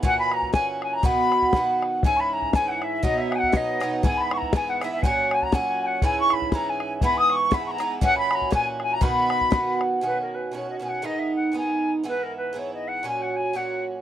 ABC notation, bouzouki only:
X:1
M:2/4
L:1/8
Q:"Swing" 1/4=120
K:B
V:1 name="Bouzouki" clef=bass
[A,,E,CF]2 [A,,E,CF]2 | [B,,D,B,F]2 [B,,D,B,F]2 | [G,,E,CE]2 [G,,E,CE]2 | [B,,F,B,D]2 [B,,F,B,D] [B,,F,B,D] |
[G,,E,B,E]2 [G,,E,B,E] [G,,E,B,E] | [A,,F,CF]2 [A,,F,CF]2 | [G,,E,CE]2 [G,,E,CE]2 | [G,,E,B,E]2 [G,,E,B,E] [G,,E,B,E] |
[A,,E,CF]2 [A,,E,CF]2 | [B,,D,B,F]2 [B,,D,B,F]2 | [B,,D,CF]2 [B,,D,CF] [B,,D,CF] | [G,,D,B,D]2 [G,,D,B,D]2 |
[G,,E,B,E]2 [G,,E,B,E]2 | [A,,F,CF]2 [A,,F,CF]2 |]